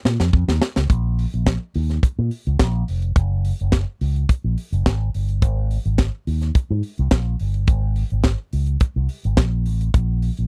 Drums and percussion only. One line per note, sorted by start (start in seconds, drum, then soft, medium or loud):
0.05 snare loud
0.20 snare medium
0.33 kick loud
0.49 snare medium
0.62 snare loud
0.76 snare loud
0.90 kick loud
0.90 closed hi-hat medium
1.19 open hi-hat medium
1.34 closed hi-hat soft
1.46 kick loud
1.46 snare medium
1.46 closed hi-hat medium
1.74 open hi-hat medium
1.89 snare soft
1.89 closed hi-hat soft
2.03 kick loud
2.03 closed hi-hat medium
2.31 open hi-hat medium
2.47 closed hi-hat soft
2.59 kick loud
2.59 snare loud
2.59 closed hi-hat medium
2.88 open hi-hat medium
3.02 closed hi-hat medium
3.16 kick loud
3.16 closed hi-hat medium
3.45 open hi-hat medium
3.60 closed hi-hat soft
3.72 kick loud
3.72 snare loud
3.72 closed hi-hat medium
4.01 open hi-hat medium
4.16 closed hi-hat soft
4.29 kick loud
4.29 closed hi-hat medium
4.58 open hi-hat medium
4.73 closed hi-hat soft
4.86 kick loud
4.86 snare loud
4.86 closed hi-hat medium
5.14 open hi-hat medium
5.29 closed hi-hat medium
5.42 kick loud
5.42 closed hi-hat medium
5.71 open hi-hat medium
5.85 closed hi-hat soft
5.98 kick loud
5.98 snare loud
5.98 closed hi-hat medium
6.27 open hi-hat medium
6.41 snare soft
6.41 closed hi-hat soft
6.55 kick loud
6.55 closed hi-hat medium
6.83 open hi-hat medium
6.98 closed hi-hat soft
7.11 kick loud
7.11 snare loud
7.11 closed hi-hat medium
7.40 open hi-hat medium
7.54 closed hi-hat medium
7.67 kick loud
7.67 closed hi-hat medium
7.96 open hi-hat medium
8.10 closed hi-hat soft
8.24 kick loud
8.24 snare loud
8.24 closed hi-hat medium
8.53 open hi-hat medium
8.66 closed hi-hat soft
8.80 kick loud
8.80 closed hi-hat medium
9.09 open hi-hat medium
9.24 closed hi-hat soft
9.37 kick loud
9.37 snare loud
9.37 closed hi-hat medium
9.66 open hi-hat medium
9.81 closed hi-hat medium
9.94 kick loud
9.94 closed hi-hat medium
10.22 open hi-hat medium
10.37 closed hi-hat soft